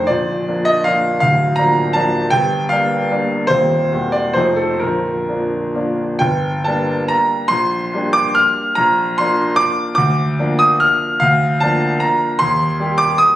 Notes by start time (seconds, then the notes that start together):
0.07 A#0 A#1 D5
0.48 F3 A#3 D4
0.65 D#5
0.84 F3 A#3 D4 F5
1.20 D1 D2 F5
1.56 F3 A#3 D4 A#5
1.93 F3 A#3 D4 A5
2.30 G1 G2 G5
2.69 G3 A#3 D4 F5
3.11 G3 A#3 D4
3.47 D#1 D#2 G3 A#3 C5
3.51 C4
3.92 E1 E2 G3 A#3 C4
4.12 D5
4.33 F1 F2 F3 A3 D#4 C5
4.56 A4
4.80 A#0 A#1 A#4
5.29 F3 A#3 D4
5.75 F3 A#3 D4
6.19 G1 G5
6.64 G3 A#3 D4 A5
7.08 A#5
7.48 A#1 C6
7.93 G3 A#3 D4
8.13 D6
8.35 F6
8.75 A#1 A#5
9.18 F3 A#3 D4 C6
9.56 D6
9.95 D2 D6
10.39 F3 A#3 D4
10.59 D#6
10.80 F6
11.20 D2 F5
11.60 F3 A#3 D4 A5
12.00 A#5
12.39 D#2 C6
12.80 G3 A#3 G4
12.98 D6
13.18 D#6